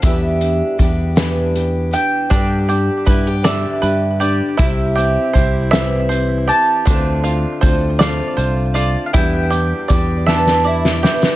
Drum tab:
HH |x-x-x-x-x-x-|x-x-x-x-x-x-|x-x-x-x-x-x-|x-x-x-x-x-x-|
SD |------o-----|------o-----|------o-----|------o-----|
BD |o---o-------|o---o-------|o---o-------|o---o-------|

HH |x-x-x-------|
SD |------oo-ooo|
BD |o---o-------|